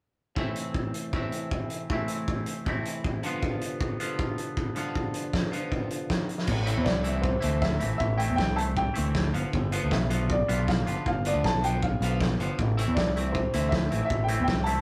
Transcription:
0.35 overdriven electric guitar A2 E3 A3 C4 E4, kick
0.56 closed hi-hat
0.74 kick
0.94 closed hi-hat
1.13 overdriven electric guitar A2 E3 A3 C4 E4, kick
1.32 closed hi-hat
1.51 kick
1.70 closed hi-hat
1.90 overdriven electric guitar A2 E3 A3 C4 E4, kick
2.08 closed hi-hat
2.28 kick
2.46 closed hi-hat
2.65 overdriven electric guitar A2 E3 A3 C4 E4, kick
2.85 closed hi-hat
3.04 kick
3.23 overdriven electric guitar G2 D3 F3 B3 F4, closed hi-hat
3.43 kick
3.61 closed hi-hat
3.81 kick
4.00 overdriven electric guitar G2 D3 F3 B3 F4, closed hi-hat
4.19 kick
4.38 closed hi-hat
4.57 kick
4.75 overdriven electric guitar G2 D3 F3 B3 F4, closed hi-hat
4.95 kick
5.14 closed hi-hat
5.33 kick, snare
5.52 overdriven electric guitar G2 D3 F3 B3 F4, closed hi-hat
5.72 kick
5.91 closed hi-hat
6.10 kick, snare
6.29 closed hi-hat
6.38 snare
6.47 fingered electric bass A1, clean electric guitar E3, kick, crash
6.66 overdriven electric guitar E3 A3 C4 E4, clean electric guitar E3, closed hi-hat
6.78 fingered electric bass E2, upright piano C5
6.84 fingered electric bass C2, upright piano D5, kick, snare
6.88 clean electric guitar A3
7.04 overdriven electric guitar E3 A3 C4 E4, clean electric guitar C4, closed hi-hat
7.22 clean electric guitar E3, upright piano C5, kick
7.41 fingered electric bass D2, overdriven electric guitar E3 A3 C4 E4, closed hi-hat
7.45 clean electric guitar C4
7.62 clean electric guitar A3, upright piano E5, kick, snare
7.80 fingered electric bass A1, overdriven electric guitar E3 A3 C4 E4, clean electric guitar G4, closed hi-hat
7.98 fingered electric bass A1, clean electric guitar E3, upright piano E5, kick
8.17 overdriven electric guitar E3 A3 C4 E4, upright piano G5, closed hi-hat
8.30 fingered electric bass E2
8.36 fingered electric bass C2, clean electric guitar A3, upright piano G5, kick, snare
8.56 overdriven electric guitar E3 A3 C4 E4, upright piano A5, closed hi-hat
8.77 clean electric guitar E3, upright piano G5, kick
8.94 fingered electric bass D2, overdriven electric guitar E3 A3 C4 E4, clean electric guitar C4, closed hi-hat
9.15 clean electric guitar A3, kick, snare
9.34 fingered electric bass G1, overdriven electric guitar D3 F3 B3 F4, clean electric guitar F3, closed hi-hat
9.53 fingered electric bass G1, clean electric guitar F3, kick
9.72 overdriven electric guitar D3 F3 B3 F4, clean electric guitar F3, closed hi-hat
9.83 fingered electric bass D2
9.91 fingered electric bass B1, clean electric guitar B3, upright piano E5, kick, snare
10.10 overdriven electric guitar D3 F3 B3 F4, clean electric guitar D4, closed hi-hat
10.30 clean electric guitar F3, upright piano D5, kick
10.48 fingered electric bass B1, overdriven electric guitar D3 F3 B3 F4, clean electric guitar D4, closed hi-hat
10.68 clean electric guitar B3, upright piano F5, kick, snare
10.87 fingered electric bass G1, overdriven electric guitar D3 F3 B3 F4, clean electric guitar G4, closed hi-hat
11.06 fingered electric bass G1, clean electric guitar F3, upright piano F5, kick
11.25 overdriven electric guitar D3 F3 B3 F4, clean electric guitar F3, upright piano D5, closed hi-hat
11.34 fingered electric bass D2
11.44 fingered electric bass B1, clean electric guitar B3, upright piano A5, kick, snare
11.64 overdriven electric guitar D3 F3 B3 F4, clean electric guitar D4, upright piano G5, closed hi-hat
11.82 clean electric guitar F3, upright piano F5, kick
12.01 fingered electric bass B1, overdriven electric guitar D3 F3 B3 F4, clean electric guitar D4, closed hi-hat
12.20 clean electric guitar B3, kick, snare
12.39 fingered electric bass G1, overdriven electric guitar D3 F3 B3 F4, clean electric guitar G4, closed hi-hat
12.59 fingered electric bass A1, clean electric guitar E3, kick
12.77 overdriven electric guitar E3 A3 C4 E4, clean electric guitar E3, closed hi-hat
12.88 fingered electric bass E2
12.94 fingered electric bass C2, clean electric guitar A3, upright piano D5, kick, snare
13.15 overdriven electric guitar E3 A3 C4 E4, clean electric guitar C4, closed hi-hat
13.32 clean electric guitar E3, upright piano C5, kick
13.54 fingered electric bass D2, overdriven electric guitar E3 A3 C4 E4, clean electric guitar C4, closed hi-hat
13.69 upright piano E5, kick, snare
13.91 fingered electric bass A1, overdriven electric guitar E3 A3 C4 E4, clean electric guitar G4, closed hi-hat
14.05 upright piano E5
14.10 fingered electric bass A1, clean electric guitar E3, kick
14.24 upright piano G5
14.28 clean electric guitar E3, overdriven electric guitar E3 A3 C4 E4, closed hi-hat
14.40 fingered electric bass E2
14.44 upright piano G5, kick
14.48 fingered electric bass C2, clean electric guitar A3, snare
14.64 overdriven electric guitar E3 A3 C4 E4, upright piano A5, closed hi-hat

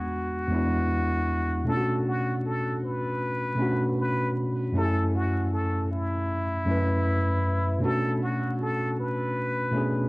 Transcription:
Already playing: tine electric piano E2 G#3 B3 D4 F#4, muted trumpet F#4
0.48 tine electric piano E2 G#3 B3
0.53 tine electric piano D4 E4
1.64 tine electric piano B2 A3 C#4
1.68 tine electric piano D4 F4, muted trumpet A4
1.77 tine electric piano F#4
2.07 muted trumpet F#4
2.46 muted trumpet A4
2.84 muted trumpet B4
3.55 tine electric piano B2 A3 C#4
3.60 tine electric piano D4 F#4
4.00 muted trumpet B4
4.72 tine electric piano F#2 A3 C#4
4.77 tine electric piano E4 G4, muted trumpet A4
4.85 tine electric piano G#5
5.15 muted trumpet F#4
5.53 muted trumpet A4
5.92 muted trumpet E4
6.65 tine electric piano F#2 A3 C#4
6.70 tine electric piano E4 B4
7.79 tine electric piano B2 A3 C#4
7.83 tine electric piano D4 F#4, muted trumpet A4
8.22 muted trumpet F#4
8.61 muted trumpet A4
9.00 muted trumpet B4
9.71 tine electric piano B2 A3 C#4
9.76 tine electric piano D4 G#4

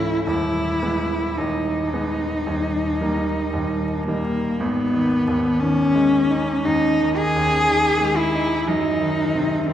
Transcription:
Already playing: grand piano C#1 C#2 E3 A3 C#4, cello E4
0.25 grand piano D#1 D#2, cello E4
0.82 grand piano G#3 B3
1.37 grand piano D#1 D#2, cello D#4
1.93 grand piano G#3 B3
2.47 grand piano D#1 D#2
3.01 grand piano G3 A#3 D#4
3.53 grand piano D#1 D#2
4.07 grand piano G3 A#3 D#4, cello A#3
4.60 grand piano G#1, cello B3
4.94 grand piano D#3
5.28 grand piano D#2
5.60 grand piano D#3, cello C#4
5.94 grand piano G#3
6.30 grand piano D#4
6.65 grand piano D#2, cello D#4
7.00 grand piano D#3
7.16 cello G#4
7.36 grand piano D#2
7.69 grand piano D#3
8.01 grand piano G#3
8.16 cello E4
8.34 grand piano D#4
8.67 grand piano F#2, cello D#4
9.00 grand piano D#3
9.34 grand piano C3
9.67 grand piano D#3, cello C4

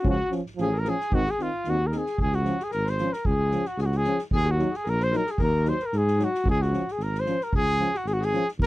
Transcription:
0.03 tuba C#2, euphonium F3 C#4, kick
0.10 trumpet F#4, alto saxophone F#4
0.30 euphonium F3 C#4, snare
0.46 snare
0.57 tuba A1, euphonium F3, snare
0.61 euphonium C#4, trumpet G#4, alto saxophone G#4
0.74 alto saxophone A#4
0.79 trumpet A#4
0.84 euphonium F3 C#4, alto saxophone G#4, snare
0.90 trumpet G#4
1.00 snare
1.11 tuba G#1, euphonium D#3 C4, alto saxophone F#4, trumpet F#4, kick
1.26 alto saxophone G#4, snare
1.31 trumpet G#4
1.39 euphonium D#3 C4, alto saxophone F4, trumpet F4, snare
1.64 tuba D#2, euphonium D#3, snare
1.68 euphonium C4, alto saxophone F#4, trumpet F#4
1.87 alto saxophone A#4, trumpet A#4
1.92 euphonium D#3 C4, alto saxophone G#4, snare
1.98 trumpet G#4
2.06 snare
2.18 tuba C#2, alto saxophone G#4, trumpet G#4, kick
2.32 alto saxophone F#4, trumpet F#4, snare
2.44 euphonium F3 C#4, snare
2.59 alto saxophone G#4, snare
2.64 trumpet G#4
2.70 tuba G#1, alto saxophone A#4, trumpet A#4, snare
2.85 alto saxophone C5, snare
2.90 trumpet C5
2.98 euphonium F3 C#4, snare
3.13 trumpet A#4, alto saxophone A#4, snare
3.25 tuba C#2, trumpet G#4, alto saxophone G#4, kick
3.51 euphonium F3 C#4, snare
3.65 alto saxophone F#4, trumpet F#4, snare
3.78 tuba C#2, alto saxophone G#4, snare
3.82 alto saxophone F#4, trumpet F#4 G#4
3.92 snare
3.97 trumpet G#4, alto saxophone G#4
4.04 euphonium F3 C#4, snare
4.18 snare
4.31 tuba D#2, alto saxophone G#4, kick
4.35 trumpet G#4
4.45 alto saxophone F#4, snare
4.51 trumpet F#4
4.58 euphonium F#3 D#4, snare
4.72 alto saxophone G#4, snare
4.77 trumpet G#4
4.85 tuba A#1, alto saxophone A#4, snare
4.89 trumpet A#4
5.00 alto saxophone C5, trumpet C5, snare
5.12 euphonium F#3 D#4, alto saxophone A#4, snare
5.17 trumpet A#4
5.26 alto saxophone G#4, snare
5.31 trumpet G#4
5.38 tuba D#2, alto saxophone A#4, kick
5.44 trumpet A#4
5.65 euphonium F#3 D#4, alto saxophone C5, snare
5.69 trumpet C5
5.79 alto saxophone A#4, snare
5.86 trumpet A#4
5.92 tuba G#2, alto saxophone G#4, snare
5.98 trumpet G#4
6.07 snare
6.18 euphonium F#3 D#4, alto saxophone F#4, snare
6.24 trumpet F#4
6.34 snare
6.45 tuba C#2, kick
6.50 alto saxophone G#4, trumpet G#4
6.62 trumpet F#4, alto saxophone F#4, snare
6.72 euphonium F3 C#4, snare
6.88 alto saxophone G#4, snare
6.92 trumpet G#4
6.98 tuba G#1, snare
7.02 alto saxophone A#4, trumpet A#4
7.14 snare
7.19 alto saxophone C5, trumpet C5
7.25 euphonium F3 C#4, snare
7.41 alto saxophone A#4, trumpet A#4, snare
7.53 tuba C#2, alto saxophone G#4, trumpet G#4, kick
7.68 snare
7.78 euphonium F3 C#4, snare
7.94 alto saxophone F#4, trumpet F#4, snare
8.05 tuba G#1, trumpet G#4, alto saxophone G#4, snare
8.14 trumpet F#4, alto saxophone F#4
8.21 alto saxophone G#4, trumpet G#4, snare
8.33 euphonium F3 C#4, snare
8.48 snare
8.59 tuba D#2, alto saxophone A#4, trumpet A#4, kick

